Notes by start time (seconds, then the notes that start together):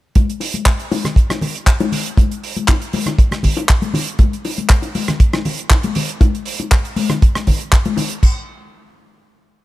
0.15 kick, closed hi-hat, high conga
0.30 closed hi-hat
0.40 open hi-hat, high bongo
0.54 closed hi-hat, high conga
0.66 kick, clap, closed hi-hat
0.80 closed hi-hat
0.91 open hi-hat, high bongo, high conga
1.05 cross-stick, closed hi-hat, low conga
1.16 kick, closed hi-hat
1.30 cross-stick, closed hi-hat, high bongo, high conga
1.41 open hi-hat, low conga
1.55 closed hi-hat
1.67 kick, clap, closed hi-hat
1.80 closed hi-hat, high bongo, high conga
1.92 open hi-hat, low conga
2.06 closed hi-hat
2.17 kick, closed hi-hat, high bongo, high conga
2.31 closed hi-hat
2.44 open hi-hat
2.56 closed hi-hat, high conga
2.68 kick, clap, closed hi-hat, high bongo
2.82 closed hi-hat
2.93 open hi-hat, high conga
3.06 cross-stick, closed hi-hat, high bongo, low conga
3.19 kick, closed hi-hat
3.31 cross-stick, closed hi-hat, high conga
3.43 kick, open hi-hat, low conga
3.57 closed hi-hat, high bongo
3.69 kick, clap, closed hi-hat
3.82 closed hi-hat, high conga
3.94 open hi-hat, high bongo, low conga
4.08 closed hi-hat
4.19 kick, closed hi-hat, high conga
4.33 closed hi-hat
4.45 open hi-hat, high bongo
4.58 closed hi-hat, high conga
4.69 kick, clap, closed hi-hat
4.82 closed hi-hat, high bongo
4.95 open hi-hat, high conga
5.08 cross-stick, closed hi-hat, low conga
5.20 kick, closed hi-hat
5.33 cross-stick, closed hi-hat, high bongo, high conga
5.45 open hi-hat, low conga
5.59 closed hi-hat
5.70 kick, clap, closed hi-hat, high bongo
5.83 closed hi-hat, high conga
5.95 open hi-hat, low conga
6.09 closed hi-hat
6.21 kick, closed hi-hat, high bongo, high conga
6.35 closed hi-hat
6.45 open hi-hat
6.59 closed hi-hat, high bongo, high conga
6.71 kick, clap, closed hi-hat
6.85 closed hi-hat
6.96 open hi-hat, high conga
7.10 cross-stick, closed hi-hat, high bongo, low conga
7.22 kick, closed hi-hat
7.35 cross-stick, closed hi-hat, high conga
7.47 kick, open hi-hat, high bongo, low conga
7.60 closed hi-hat
7.73 kick, clap, closed hi-hat
7.85 closed hi-hat, high conga
7.97 open hi-hat, high bongo, low conga
8.11 closed hi-hat
8.23 kick, splash